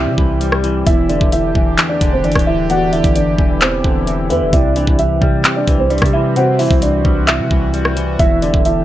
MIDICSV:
0, 0, Header, 1, 8, 480
1, 0, Start_track
1, 0, Key_signature, 1, "minor"
1, 0, Tempo, 458015
1, 908, Time_signature, 4, 2, 24, 8
1, 9270, End_track
2, 0, Start_track
2, 0, Title_t, "Soft synth lead"
2, 0, Program_c, 0, 80
2, 910, Note_on_c, 0, 76, 107
2, 1360, Note_off_c, 0, 76, 0
2, 2829, Note_on_c, 0, 74, 111
2, 3280, Note_off_c, 0, 74, 0
2, 4507, Note_on_c, 0, 76, 81
2, 4735, Note_off_c, 0, 76, 0
2, 4746, Note_on_c, 0, 74, 114
2, 5198, Note_off_c, 0, 74, 0
2, 6667, Note_on_c, 0, 72, 110
2, 7119, Note_off_c, 0, 72, 0
2, 8589, Note_on_c, 0, 76, 109
2, 9040, Note_off_c, 0, 76, 0
2, 9270, End_track
3, 0, Start_track
3, 0, Title_t, "Felt piano"
3, 0, Program_c, 1, 0
3, 0, Note_on_c, 1, 64, 62
3, 0, Note_on_c, 1, 76, 83
3, 863, Note_off_c, 1, 76, 0
3, 867, Note_off_c, 1, 64, 0
3, 907, Note_on_c, 1, 76, 109
3, 916, Note_on_c, 1, 64, 77
3, 1097, Note_off_c, 1, 76, 0
3, 1102, Note_off_c, 1, 64, 0
3, 1144, Note_on_c, 1, 74, 83
3, 1152, Note_on_c, 1, 62, 66
3, 1335, Note_off_c, 1, 74, 0
3, 1340, Note_off_c, 1, 62, 0
3, 1388, Note_on_c, 1, 76, 89
3, 1397, Note_on_c, 1, 64, 76
3, 1952, Note_off_c, 1, 76, 0
3, 1957, Note_off_c, 1, 64, 0
3, 1983, Note_on_c, 1, 74, 84
3, 1991, Note_on_c, 1, 62, 65
3, 2175, Note_off_c, 1, 74, 0
3, 2180, Note_off_c, 1, 62, 0
3, 2228, Note_on_c, 1, 72, 81
3, 2237, Note_on_c, 1, 60, 62
3, 2323, Note_off_c, 1, 72, 0
3, 2328, Note_off_c, 1, 60, 0
3, 2355, Note_on_c, 1, 74, 81
3, 2363, Note_on_c, 1, 62, 63
3, 2542, Note_off_c, 1, 74, 0
3, 2547, Note_off_c, 1, 62, 0
3, 2585, Note_on_c, 1, 76, 98
3, 2594, Note_on_c, 1, 64, 68
3, 2776, Note_off_c, 1, 76, 0
3, 2781, Note_off_c, 1, 64, 0
3, 2829, Note_on_c, 1, 78, 109
3, 2838, Note_on_c, 1, 66, 88
3, 3019, Note_off_c, 1, 78, 0
3, 3024, Note_off_c, 1, 66, 0
3, 3063, Note_on_c, 1, 76, 83
3, 3071, Note_on_c, 1, 64, 66
3, 3255, Note_off_c, 1, 76, 0
3, 3260, Note_off_c, 1, 64, 0
3, 3310, Note_on_c, 1, 74, 91
3, 3318, Note_on_c, 1, 62, 71
3, 3760, Note_off_c, 1, 74, 0
3, 3764, Note_off_c, 1, 62, 0
3, 3788, Note_on_c, 1, 72, 95
3, 3796, Note_on_c, 1, 60, 71
3, 4466, Note_off_c, 1, 72, 0
3, 4470, Note_off_c, 1, 60, 0
3, 4506, Note_on_c, 1, 71, 88
3, 4514, Note_on_c, 1, 59, 70
3, 4697, Note_off_c, 1, 71, 0
3, 4702, Note_off_c, 1, 59, 0
3, 4748, Note_on_c, 1, 76, 90
3, 4757, Note_on_c, 1, 64, 81
3, 4938, Note_off_c, 1, 76, 0
3, 4943, Note_off_c, 1, 64, 0
3, 4990, Note_on_c, 1, 74, 80
3, 4999, Note_on_c, 1, 62, 68
3, 5179, Note_off_c, 1, 74, 0
3, 5184, Note_off_c, 1, 62, 0
3, 5229, Note_on_c, 1, 76, 99
3, 5238, Note_on_c, 1, 64, 69
3, 5792, Note_off_c, 1, 76, 0
3, 5797, Note_off_c, 1, 64, 0
3, 5831, Note_on_c, 1, 74, 81
3, 5839, Note_on_c, 1, 62, 60
3, 6020, Note_off_c, 1, 74, 0
3, 6025, Note_off_c, 1, 62, 0
3, 6068, Note_on_c, 1, 72, 84
3, 6077, Note_on_c, 1, 60, 62
3, 6163, Note_off_c, 1, 72, 0
3, 6168, Note_off_c, 1, 60, 0
3, 6185, Note_on_c, 1, 74, 83
3, 6193, Note_on_c, 1, 62, 68
3, 6376, Note_off_c, 1, 74, 0
3, 6381, Note_off_c, 1, 62, 0
3, 6427, Note_on_c, 1, 76, 84
3, 6435, Note_on_c, 1, 64, 66
3, 6617, Note_off_c, 1, 76, 0
3, 6622, Note_off_c, 1, 64, 0
3, 6669, Note_on_c, 1, 78, 96
3, 6677, Note_on_c, 1, 66, 77
3, 6858, Note_off_c, 1, 78, 0
3, 6863, Note_off_c, 1, 66, 0
3, 6903, Note_on_c, 1, 76, 81
3, 6911, Note_on_c, 1, 64, 63
3, 7095, Note_off_c, 1, 76, 0
3, 7100, Note_off_c, 1, 64, 0
3, 7154, Note_on_c, 1, 74, 90
3, 7162, Note_on_c, 1, 62, 67
3, 7602, Note_off_c, 1, 74, 0
3, 7606, Note_off_c, 1, 62, 0
3, 7622, Note_on_c, 1, 76, 83
3, 7630, Note_on_c, 1, 64, 62
3, 8543, Note_off_c, 1, 76, 0
3, 8547, Note_off_c, 1, 64, 0
3, 8587, Note_on_c, 1, 76, 111
3, 8596, Note_on_c, 1, 64, 81
3, 8777, Note_off_c, 1, 76, 0
3, 8783, Note_off_c, 1, 64, 0
3, 8824, Note_on_c, 1, 74, 83
3, 8832, Note_on_c, 1, 62, 67
3, 9015, Note_off_c, 1, 74, 0
3, 9021, Note_off_c, 1, 62, 0
3, 9069, Note_on_c, 1, 76, 90
3, 9077, Note_on_c, 1, 64, 77
3, 9270, Note_off_c, 1, 64, 0
3, 9270, Note_off_c, 1, 76, 0
3, 9270, End_track
4, 0, Start_track
4, 0, Title_t, "Analog synth pad"
4, 0, Program_c, 2, 89
4, 0, Note_on_c, 2, 52, 79
4, 0, Note_on_c, 2, 60, 74
4, 0, Note_on_c, 2, 67, 87
4, 869, Note_off_c, 2, 60, 0
4, 869, Note_off_c, 2, 67, 0
4, 908, Note_on_c, 2, 62, 75
4, 908, Note_on_c, 2, 67, 92
4, 2809, Note_off_c, 2, 62, 0
4, 2827, Note_on_c, 2, 64, 74
4, 4728, Note_off_c, 2, 64, 0
4, 4748, Note_on_c, 2, 60, 72
4, 6626, Note_off_c, 2, 67, 0
4, 6668, Note_on_c, 2, 66, 88
4, 8546, Note_off_c, 2, 52, 0
4, 8549, Note_off_c, 2, 60, 0
4, 8568, Note_off_c, 2, 66, 0
4, 8588, Note_on_c, 2, 62, 73
4, 8588, Note_on_c, 2, 67, 90
4, 8589, Note_on_c, 2, 52, 77
4, 9270, Note_off_c, 2, 52, 0
4, 9270, Note_off_c, 2, 62, 0
4, 9270, Note_off_c, 2, 67, 0
4, 9270, End_track
5, 0, Start_track
5, 0, Title_t, "Clean electric guitar"
5, 0, Program_c, 3, 27
5, 0, Note_on_c, 3, 48, 97
5, 0, Note_on_c, 3, 52, 92
5, 0, Note_on_c, 3, 55, 84
5, 177, Note_off_c, 3, 52, 0
5, 189, Note_on_c, 3, 52, 81
5, 416, Note_off_c, 3, 55, 0
5, 429, Note_on_c, 3, 55, 79
5, 656, Note_off_c, 3, 52, 0
5, 669, Note_on_c, 3, 52, 82
5, 902, Note_on_c, 3, 40, 94
5, 907, Note_off_c, 3, 48, 0
5, 908, Note_off_c, 3, 52, 0
5, 908, Note_off_c, 3, 55, 0
5, 1148, Note_on_c, 3, 50, 78
5, 1632, Note_on_c, 3, 52, 86
5, 1853, Note_off_c, 3, 40, 0
5, 1865, Note_on_c, 3, 40, 86
5, 2094, Note_off_c, 3, 50, 0
5, 2107, Note_on_c, 3, 50, 89
5, 2333, Note_off_c, 3, 52, 0
5, 2346, Note_on_c, 3, 52, 88
5, 2576, Note_off_c, 3, 50, 0
5, 2589, Note_on_c, 3, 50, 89
5, 2815, Note_off_c, 3, 40, 0
5, 2827, Note_on_c, 3, 40, 96
5, 3053, Note_off_c, 3, 50, 0
5, 3065, Note_on_c, 3, 50, 89
5, 3534, Note_off_c, 3, 52, 0
5, 3546, Note_on_c, 3, 52, 85
5, 3777, Note_off_c, 3, 40, 0
5, 3790, Note_on_c, 3, 40, 89
5, 4017, Note_off_c, 3, 50, 0
5, 4030, Note_on_c, 3, 50, 80
5, 4256, Note_off_c, 3, 52, 0
5, 4269, Note_on_c, 3, 52, 87
5, 4494, Note_off_c, 3, 50, 0
5, 4507, Note_on_c, 3, 50, 86
5, 4740, Note_off_c, 3, 52, 0
5, 4744, Note_on_c, 3, 48, 95
5, 4747, Note_off_c, 3, 50, 0
5, 4749, Note_off_c, 3, 40, 0
5, 4990, Note_on_c, 3, 52, 88
5, 5462, Note_on_c, 3, 55, 80
5, 5690, Note_off_c, 3, 48, 0
5, 5703, Note_on_c, 3, 48, 91
5, 5933, Note_off_c, 3, 52, 0
5, 5945, Note_on_c, 3, 52, 86
5, 6173, Note_off_c, 3, 55, 0
5, 6185, Note_on_c, 3, 55, 88
5, 6414, Note_off_c, 3, 52, 0
5, 6426, Note_on_c, 3, 52, 84
5, 6656, Note_off_c, 3, 48, 0
5, 6669, Note_on_c, 3, 48, 94
5, 6901, Note_off_c, 3, 52, 0
5, 6913, Note_on_c, 3, 52, 91
5, 7378, Note_off_c, 3, 55, 0
5, 7391, Note_on_c, 3, 55, 84
5, 7614, Note_off_c, 3, 48, 0
5, 7626, Note_on_c, 3, 48, 94
5, 7857, Note_off_c, 3, 52, 0
5, 7870, Note_on_c, 3, 52, 82
5, 8097, Note_off_c, 3, 55, 0
5, 8110, Note_on_c, 3, 55, 78
5, 8338, Note_off_c, 3, 52, 0
5, 8350, Note_on_c, 3, 52, 81
5, 8583, Note_on_c, 3, 40, 94
5, 8587, Note_off_c, 3, 48, 0
5, 8589, Note_off_c, 3, 52, 0
5, 8589, Note_off_c, 3, 55, 0
5, 8829, Note_on_c, 3, 50, 82
5, 9270, Note_off_c, 3, 40, 0
5, 9270, Note_off_c, 3, 50, 0
5, 9270, End_track
6, 0, Start_track
6, 0, Title_t, "808-style bass"
6, 0, Program_c, 4, 38
6, 67, Note_on_c, 4, 48, 100
6, 181, Note_off_c, 4, 48, 0
6, 188, Note_on_c, 4, 36, 112
6, 879, Note_off_c, 4, 36, 0
6, 908, Note_on_c, 4, 28, 112
6, 1253, Note_off_c, 4, 28, 0
6, 1268, Note_on_c, 4, 28, 103
6, 1613, Note_off_c, 4, 28, 0
6, 1627, Note_on_c, 4, 28, 102
6, 1858, Note_off_c, 4, 28, 0
6, 2108, Note_on_c, 4, 28, 113
6, 2348, Note_on_c, 4, 31, 103
6, 2363, Note_off_c, 4, 28, 0
6, 2462, Note_off_c, 4, 31, 0
6, 2468, Note_on_c, 4, 26, 106
6, 3159, Note_off_c, 4, 26, 0
6, 3188, Note_on_c, 4, 31, 105
6, 3533, Note_off_c, 4, 31, 0
6, 3547, Note_on_c, 4, 28, 104
6, 4008, Note_off_c, 4, 28, 0
6, 4029, Note_on_c, 4, 28, 106
6, 4507, Note_on_c, 4, 40, 98
6, 4523, Note_off_c, 4, 28, 0
6, 4627, Note_on_c, 4, 28, 102
6, 4643, Note_off_c, 4, 40, 0
6, 4741, Note_off_c, 4, 28, 0
6, 4747, Note_on_c, 4, 36, 108
6, 5093, Note_off_c, 4, 36, 0
6, 5108, Note_on_c, 4, 36, 105
6, 5453, Note_off_c, 4, 36, 0
6, 5467, Note_on_c, 4, 48, 103
6, 5928, Note_off_c, 4, 48, 0
6, 5948, Note_on_c, 4, 36, 104
6, 6294, Note_off_c, 4, 36, 0
6, 6308, Note_on_c, 4, 48, 106
6, 6999, Note_off_c, 4, 48, 0
6, 7028, Note_on_c, 4, 36, 102
6, 7373, Note_off_c, 4, 36, 0
6, 7387, Note_on_c, 4, 36, 106
6, 7748, Note_on_c, 4, 48, 101
6, 7764, Note_off_c, 4, 36, 0
6, 7862, Note_off_c, 4, 48, 0
6, 7869, Note_on_c, 4, 36, 104
6, 8559, Note_off_c, 4, 36, 0
6, 8588, Note_on_c, 4, 28, 110
6, 8933, Note_off_c, 4, 28, 0
6, 8948, Note_on_c, 4, 28, 101
6, 9270, Note_off_c, 4, 28, 0
6, 9270, End_track
7, 0, Start_track
7, 0, Title_t, "Downlifter"
7, 0, Program_c, 5, 103
7, 0, Note_on_c, 5, 60, 88
7, 907, Note_off_c, 5, 60, 0
7, 9270, End_track
8, 0, Start_track
8, 0, Title_t, "Drums"
8, 188, Note_on_c, 9, 36, 97
8, 293, Note_off_c, 9, 36, 0
8, 428, Note_on_c, 9, 42, 66
8, 533, Note_off_c, 9, 42, 0
8, 547, Note_on_c, 9, 37, 102
8, 652, Note_off_c, 9, 37, 0
8, 669, Note_on_c, 9, 42, 78
8, 774, Note_off_c, 9, 42, 0
8, 907, Note_on_c, 9, 36, 120
8, 907, Note_on_c, 9, 42, 80
8, 1012, Note_off_c, 9, 36, 0
8, 1012, Note_off_c, 9, 42, 0
8, 1147, Note_on_c, 9, 42, 64
8, 1252, Note_off_c, 9, 42, 0
8, 1268, Note_on_c, 9, 36, 103
8, 1373, Note_off_c, 9, 36, 0
8, 1387, Note_on_c, 9, 42, 79
8, 1492, Note_off_c, 9, 42, 0
8, 1627, Note_on_c, 9, 36, 93
8, 1732, Note_off_c, 9, 36, 0
8, 1865, Note_on_c, 9, 42, 87
8, 1867, Note_on_c, 9, 39, 109
8, 1970, Note_off_c, 9, 42, 0
8, 1972, Note_off_c, 9, 39, 0
8, 2107, Note_on_c, 9, 42, 83
8, 2108, Note_on_c, 9, 36, 99
8, 2212, Note_off_c, 9, 42, 0
8, 2213, Note_off_c, 9, 36, 0
8, 2347, Note_on_c, 9, 42, 41
8, 2427, Note_off_c, 9, 42, 0
8, 2427, Note_on_c, 9, 42, 57
8, 2467, Note_on_c, 9, 37, 100
8, 2468, Note_on_c, 9, 36, 96
8, 2507, Note_off_c, 9, 42, 0
8, 2507, Note_on_c, 9, 42, 71
8, 2572, Note_off_c, 9, 37, 0
8, 2573, Note_off_c, 9, 36, 0
8, 2612, Note_off_c, 9, 42, 0
8, 2827, Note_on_c, 9, 42, 83
8, 2932, Note_off_c, 9, 42, 0
8, 3068, Note_on_c, 9, 42, 56
8, 3172, Note_off_c, 9, 42, 0
8, 3187, Note_on_c, 9, 42, 58
8, 3188, Note_on_c, 9, 36, 101
8, 3292, Note_off_c, 9, 42, 0
8, 3293, Note_off_c, 9, 36, 0
8, 3307, Note_on_c, 9, 42, 79
8, 3412, Note_off_c, 9, 42, 0
8, 3547, Note_on_c, 9, 36, 94
8, 3652, Note_off_c, 9, 36, 0
8, 3786, Note_on_c, 9, 42, 83
8, 3787, Note_on_c, 9, 39, 109
8, 3891, Note_off_c, 9, 42, 0
8, 3892, Note_off_c, 9, 39, 0
8, 4028, Note_on_c, 9, 36, 94
8, 4133, Note_off_c, 9, 36, 0
8, 4269, Note_on_c, 9, 42, 67
8, 4374, Note_off_c, 9, 42, 0
8, 4509, Note_on_c, 9, 42, 77
8, 4614, Note_off_c, 9, 42, 0
8, 4747, Note_on_c, 9, 36, 118
8, 4747, Note_on_c, 9, 42, 84
8, 4852, Note_off_c, 9, 36, 0
8, 4852, Note_off_c, 9, 42, 0
8, 4988, Note_on_c, 9, 42, 62
8, 5092, Note_off_c, 9, 42, 0
8, 5108, Note_on_c, 9, 36, 103
8, 5213, Note_off_c, 9, 36, 0
8, 5227, Note_on_c, 9, 42, 81
8, 5332, Note_off_c, 9, 42, 0
8, 5467, Note_on_c, 9, 36, 92
8, 5572, Note_off_c, 9, 36, 0
8, 5705, Note_on_c, 9, 42, 86
8, 5707, Note_on_c, 9, 39, 113
8, 5810, Note_off_c, 9, 42, 0
8, 5812, Note_off_c, 9, 39, 0
8, 5947, Note_on_c, 9, 42, 80
8, 5948, Note_on_c, 9, 36, 97
8, 6051, Note_off_c, 9, 42, 0
8, 6053, Note_off_c, 9, 36, 0
8, 6187, Note_on_c, 9, 42, 43
8, 6267, Note_off_c, 9, 42, 0
8, 6267, Note_on_c, 9, 42, 54
8, 6307, Note_on_c, 9, 37, 105
8, 6308, Note_on_c, 9, 36, 96
8, 6347, Note_off_c, 9, 42, 0
8, 6347, Note_on_c, 9, 42, 74
8, 6412, Note_off_c, 9, 37, 0
8, 6413, Note_off_c, 9, 36, 0
8, 6452, Note_off_c, 9, 42, 0
8, 6667, Note_on_c, 9, 42, 80
8, 6772, Note_off_c, 9, 42, 0
8, 6908, Note_on_c, 9, 46, 70
8, 7012, Note_off_c, 9, 46, 0
8, 7028, Note_on_c, 9, 36, 107
8, 7133, Note_off_c, 9, 36, 0
8, 7147, Note_on_c, 9, 42, 80
8, 7252, Note_off_c, 9, 42, 0
8, 7387, Note_on_c, 9, 36, 91
8, 7492, Note_off_c, 9, 36, 0
8, 7626, Note_on_c, 9, 42, 84
8, 7627, Note_on_c, 9, 39, 109
8, 7731, Note_off_c, 9, 42, 0
8, 7732, Note_off_c, 9, 39, 0
8, 7869, Note_on_c, 9, 36, 101
8, 7974, Note_off_c, 9, 36, 0
8, 8109, Note_on_c, 9, 42, 67
8, 8214, Note_off_c, 9, 42, 0
8, 8228, Note_on_c, 9, 37, 103
8, 8333, Note_off_c, 9, 37, 0
8, 8350, Note_on_c, 9, 42, 77
8, 8454, Note_off_c, 9, 42, 0
8, 8588, Note_on_c, 9, 36, 121
8, 8588, Note_on_c, 9, 42, 85
8, 8693, Note_off_c, 9, 36, 0
8, 8693, Note_off_c, 9, 42, 0
8, 8828, Note_on_c, 9, 42, 63
8, 8932, Note_off_c, 9, 42, 0
8, 8948, Note_on_c, 9, 36, 104
8, 9053, Note_off_c, 9, 36, 0
8, 9067, Note_on_c, 9, 42, 75
8, 9172, Note_off_c, 9, 42, 0
8, 9270, End_track
0, 0, End_of_file